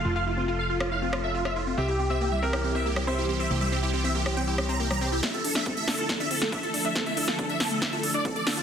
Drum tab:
HH |----------------|----------------|----------------|xxo-xxoxxxoxxxox|
SD |-------r--r--r--|-------r---r----|-------r--r--r--|o--o--o-o--o----|
BD |----------------|----------------|----------------|o---o---o---o---|

HH |xxo-xxoxxxoxxxox|
SD |o--o--o-o-----o-|
BD |o---o---o---o---|